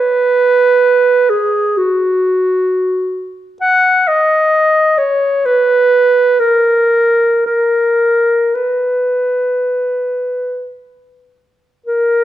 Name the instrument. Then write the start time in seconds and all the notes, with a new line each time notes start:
clarinet
Already playing: B4
1.30 G#4
1.77 F#4
3.61 F#5
4.08 D#5
4.98 C#5
5.46 B4
6.40 A#4
7.46 A#4
8.55 B4
11.86 A#4